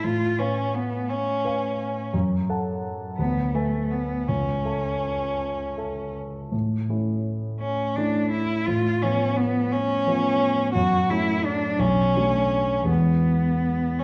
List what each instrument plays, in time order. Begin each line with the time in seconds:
0.03 grand piano A2, cello F4
0.39 cello C#4, grand piano B4 F5 G#5
0.74 cello B3
1.09 cello C#4
1.45 grand piano B4 F5 G#5
2.14 grand piano F#2
2.49 grand piano A4 F#5 A5
3.18 grand piano D2, cello B3
3.55 cello A3, grand piano B4 E5 G#5
3.90 cello B3
4.28 grand piano C#2, cello C#4
4.65 grand piano A4 E5 A5
5.78 grand piano A4 E5 A5
6.52 grand piano A2
6.89 grand piano A3 C#4 E4
7.60 cello C#4
7.96 grand piano A3 C#4 E4, cello D4
8.31 cello E4
8.66 grand piano A2, cello F4
9.02 grand piano F3 B3 C#4, cello C#4
9.37 cello B3
9.72 cello C#4
10.07 grand piano F3 B3 C#4
10.74 grand piano F#2, cello F#4
11.10 grand piano F#3 A3 C#4, cello E4
11.44 cello D4
11.79 grand piano B1, cello C#4
12.16 grand piano F#3 A3 D4
12.83 grand piano E2 E3 G#3 E4
12.89 cello B3
13.99 cello C#4